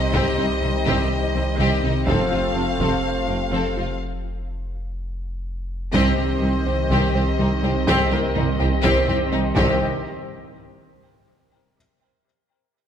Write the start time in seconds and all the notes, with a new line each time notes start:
Already playing: C2 C3 D#3 G3 C4 D#4 G4 C5 D#5
0.13 C2 C3 C4 G4, taiko
0.38 C2 C4 D#4
0.62 C2 G3 C4
0.86 C2 C3 C4 G4, taiko
1.34 C2 G3 C4
1.59 C2 C3 C4 G4
1.83 C2 C4 D#4
2.06 F1 F2 C3 F3 A3 C4 F4 A4 C5 F5, taiko
2.31 F1 F2 C4 F4
2.55 F1 F2 C4
2.79 F1 F2 F3 C4 A4, taiko
3.28 F1 F2 C4
3.52 F1 F2 F3 C4 A4
3.76 F1 F2 C4 F4
5.93 C2 C3 D#3 C4 G4 C5 D#5, taiko
6.17 C2 G3 C4 G4
6.42 C2 G3 C4 D#4
6.66 C2 C4 G4
6.90 C2 C3 D#3 C4 G4 C5, taiko
7.14 C2 C4 G4
7.39 C2 G3 C4 D#4
7.63 C2 G3 C4 G4
7.87 C2 C3 D#3 C4 G4 C5, taiko
8.11 C2 G3 A#3 C4 G4 A#4
8.34 C2 G3 C4 D#4, taiko low-mid
8.59 C2 C4 G4
8.83 C2 C3 D#3 C4 G4 C5, taiko
9.08 C2 C4 G4, taiko low-mid
9.32 C2 G3 C4 D#4
9.56 C2 D#3 C4 G4 C5 D#5, taiko